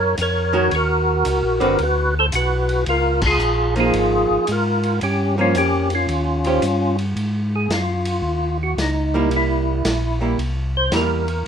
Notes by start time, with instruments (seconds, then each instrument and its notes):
Already playing: tonewheel organ F#2 A#4 C#5
0.17 tonewheel organ F2 A#4, hi-hat pedal, ride
0.22 tonewheel organ C#5
0.53 hollow-body jazz guitar D#3 C#4 F#4 A#4
0.71 tonewheel organ D#2 F#4, ride
0.76 tonewheel organ A#4
1.25 tonewheel organ C#2, hi-hat pedal, ride
1.42 tonewheel organ A#1
1.60 tonewheel organ F#1, hollow-body jazz guitar D3 C4 F#4 B4, ride
1.78 tonewheel organ D2, ride
1.83 tonewheel organ F#4 B4
2.19 tonewheel organ A4 C5
2.32 tonewheel organ B1 F#4, hi-hat pedal, ride
2.36 tonewheel organ B4
2.69 ride
2.86 tonewheel organ C#2 F4 A#4, ride
3.21 kick, crash
3.26 tonewheel organ F4 G#4
3.39 tonewheel organ A#1, hi-hat pedal
3.76 hollow-body jazz guitar F3 A#3 D#4, ride
3.80 tonewheel organ F4 G#4
3.93 tonewheel organ G#1, ride
4.30 tonewheel organ G#1
4.47 tonewheel organ G#2, hi-hat pedal, ride
4.51 tonewheel organ F4 A#4
4.83 ride
5.01 tonewheel organ G2 C#4 G4, ride
5.38 hollow-body jazz guitar F3 A#3 C#4, tonewheel organ C#4 F4
5.54 tonewheel organ F2 C#4 G4, hi-hat pedal, ride
5.90 ride
5.95 tonewheel organ C#4 F4
6.07 tonewheel organ D#2, ride
6.44 hollow-body jazz guitar D#3 C#4 G4 C5, ride
6.62 tonewheel organ G2, hi-hat pedal, ride
6.99 ride
7.16 tonewheel organ G#2, ride
7.56 tonewheel organ G#4
7.69 tonewheel organ F#2, snare, hi-hat pedal, ride
7.74 tonewheel organ F4
8.05 ride
8.22 tonewheel organ D#2
8.63 tonewheel organ F#4
8.77 tonewheel organ C#2, snare, hi-hat pedal, ride
8.82 tonewheel organ D#4
9.14 hollow-body jazz guitar G3 A#3 E4
9.29 tonewheel organ C2, ride
9.37 tonewheel organ E4
9.84 tonewheel organ A#1, snare, hi-hat pedal, ride
10.21 hollow-body jazz guitar G3 A#3 E4
10.38 tonewheel organ C2, ride
10.77 tonewheel organ C5
10.91 tonewheel organ E2, hollow-body jazz guitar G3 A#3 E4, snare, hi-hat pedal, ride
10.97 tonewheel organ A#4
11.28 ride